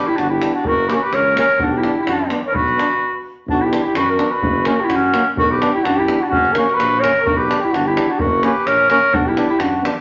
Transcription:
0.07 clarinet E4, flugelhorn G4
0.16 tuba G1, clarinet D4, flugelhorn F#4, davul high
0.29 clarinet E4, flugelhorn G4
0.41 euphonium B3, trombone D4, davul high
0.54 clarinet D4, flugelhorn F#4
0.65 tuba F#1, clarinet F#4, flugelhorn A#4, davul low
0.88 euphonium A#3, trombone C#4, clarinet G4, flugelhorn B4, davul high
0.93 clarinet F#4, flugelhorn A#4
1.00 flugelhorn B4
1.04 clarinet G4
1.11 tuba C#2, clarinet A#4, flugelhorn C#5, davul high
1.34 euphonium A#3, trombone C#4, flugelhorn C#5, davul high
1.39 clarinet A#4
1.59 tuba B1, flugelhorn F#4, davul low
1.64 clarinet D4
1.71 flugelhorn G4
1.78 clarinet E4
1.82 euphonium B3, trombone D4, davul high
1.97 flugelhorn G4
2.02 clarinet E4
2.06 tuba F#2, flugelhorn F#4, davul high
2.12 clarinet D4
2.29 euphonium B3, trombone D4, davul high
2.45 clarinet A#4, flugelhorn C#5
2.52 tuba B1, clarinet F#4, flugelhorn B4, davul low
2.68 davul high
2.75 euphonium B3, trombone D4
2.79 davul high
2.91 davul high
3.47 tuba B1, clarinet D4, flugelhorn F#4, davul low
3.61 clarinet E4, flugelhorn G4
3.70 euphonium B3, trombone D4, davul high
3.83 clarinet E4, flugelhorn G4
3.94 tuba F#2, clarinet F#4, flugelhorn B4, davul high
4.09 clarinet F#4, flugelhorn A#4
4.17 euphonium B3, trombone D4, davul high
4.31 clarinet F#4, flugelhorn B4
4.41 tuba F#1, davul low
4.65 euphonium A#3, trombone C#4, clarinet F#4, flugelhorn A#4, davul high
4.80 clarinet E4, flugelhorn G4
4.88 tuba F#2, flugelhorn F#4, davul high
4.95 clarinet C#4
5.13 euphonium A#3, trombone C#4, davul high
5.37 tuba B1, clarinet F#4, flugelhorn A#4, davul low
5.51 clarinet G4, flugelhorn B4
5.60 euphonium B3, trombone D4, davul high
5.73 clarinet E4, flugelhorn G4
5.83 tuba F#2, clarinet D4, flugelhorn F#4, davul high
5.96 clarinet E4, flugelhorn G4
6.06 euphonium B3, trombone D4, davul high
6.20 clarinet D4, flugelhorn F#4
6.29 tuba F#1, clarinet C#4, flugelhorn F#4, davul low
6.45 davul high
6.52 euphonium A#3, flugelhorn A#4, davul high
6.57 trombone C#4, clarinet F#4
6.70 davul high
6.75 tuba A#1, flugelhorn B4
6.79 clarinet F#4, davul high
7.00 euphonium A#3, trombone C#4, clarinet A#4, flugelhorn C#5, davul high
7.21 tuba B1, clarinet F#4, flugelhorn A#4
7.26 davul low
7.36 clarinet G4, flugelhorn B4
7.47 euphonium B3, trombone D4, davul high
7.60 flugelhorn G4
7.64 clarinet E4
7.72 tuba G1, clarinet D4, flugelhorn F#4, davul high
7.85 clarinet E4, flugelhorn G4
7.95 euphonium B3, trombone D4, davul high
8.09 clarinet D4, flugelhorn F#4
8.19 tuba F#1, clarinet F#4, flugelhorn A#4, davul low
8.43 euphonium A#3, trombone C#4, clarinet G4, flugelhorn B4, davul high
8.66 tuba A#1, clarinet A#4, flugelhorn C#5, davul high
8.89 euphonium A#3, trombone C#4, clarinet A#4, flugelhorn C#5, davul high
9.13 tuba B1, clarinet D4, flugelhorn F#4, davul low
9.26 clarinet E4, flugelhorn G4
9.35 euphonium B3, trombone D4, davul high
9.49 clarinet E4, flugelhorn G4
9.59 tuba F#2, clarinet D4, flugelhorn F#4, davul high
9.82 euphonium B3, trombone D4, davul high

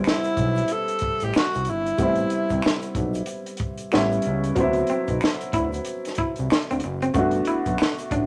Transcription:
Already playing: upright piano G3 B3 C4 E4
0.04 finger snap, snare, shaker
0.09 tenor saxophone E4
0.23 closed hi-hat, shaker
0.37 analog synth bass B1, kick, closed hi-hat, shaker
0.55 closed hi-hat, shaker
0.68 closed hi-hat, shaker
0.73 tenor saxophone A4
0.88 closed hi-hat, shaker
0.99 kick, closed hi-hat
1.03 analog synth bass A1
1.20 analog synth bass A1, closed hi-hat, shaker
1.24 tenor saxophone G4
1.34 tenor saxophone F#4, finger snap, snare, shaker
1.54 analog synth bass C2, closed hi-hat, shaker
1.65 analog synth bass G1, closed hi-hat, shaker
1.69 tenor saxophone E4
1.86 closed hi-hat, shaker
1.98 analog synth bass A1, upright piano G3 B3 C4, kick, closed hi-hat, shaker
2.03 upright piano E4
2.16 closed hi-hat, shaker
2.30 closed hi-hat, shaker
2.49 analog synth bass C2, kick, closed hi-hat, shaker
2.62 finger snap, snare, shaker
2.82 closed hi-hat, shaker
2.95 analog synth bass B1, kick, closed hi-hat, shaker
3.14 closed hi-hat, shaker
3.26 closed hi-hat, shaker
3.46 closed hi-hat, shaker
3.57 kick, closed hi-hat
3.78 closed hi-hat, shaker
3.92 analog synth bass A1, upright piano G3 B3 C#4 E4, finger snap, snare, shaker
4.12 closed hi-hat, shaker
4.22 closed hi-hat, shaker
4.26 analog synth bass C#2
4.44 closed hi-hat, shaker
4.55 analog synth bass D2, upright piano F#3 B3 C4, kick, closed hi-hat, shaker
4.60 upright piano E4
4.73 closed hi-hat, shaker
4.87 clean electric guitar C4, closed hi-hat, shaker
5.08 analog synth bass B1, kick, closed hi-hat, shaker
5.21 finger snap, snare, shaker
5.40 closed hi-hat, shaker
5.53 analog synth bass D2, clean electric guitar E4, kick, closed hi-hat, shaker
5.72 closed hi-hat, shaker
5.85 closed hi-hat, shaker
6.05 snare, closed hi-hat, shaker
6.15 clean electric guitar E4, kick, closed hi-hat
6.19 analog synth bass C2
6.36 analog synth bass C2, closed hi-hat, shaker
6.50 finger snap, snare, shaker
6.70 analog synth bass D2, clean electric guitar C4, closed hi-hat, shaker
6.80 closed hi-hat, shaker
6.84 analog synth bass F#1, muted clean electric guitar stroke
7.02 clean electric guitar C4, closed hi-hat, shaker
7.14 analog synth bass G1, upright piano A3 B3 D4, kick, closed hi-hat, shaker
7.19 upright piano F#4
7.31 closed hi-hat, shaker
7.45 clean electric guitar E4, closed hi-hat, shaker
7.66 analog synth bass B1, kick, closed hi-hat, shaker
7.78 finger snap, snare, shaker
7.98 closed hi-hat, shaker
8.11 analog synth bass A1, clean electric guitar D4, kick, closed hi-hat, shaker

